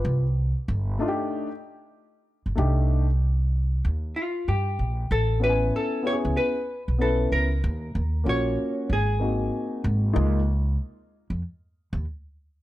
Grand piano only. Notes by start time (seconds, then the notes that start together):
Already playing: F4 B4
0.98 A3 D4 D#4 F4
1.08 G4
2.55 A3 D4 D#4 G4
5.40 B3 C#4 E4 G4
5.49 G#5
6.03 B3 C#4 E4 G4
6.13 G#4
6.98 B3 C#4 E4 B4
8.24 A#3 C#4 F4 F#4
9.19 A#3 C4 D#4 F#4
10.13 G#3 A#3 D#4 F4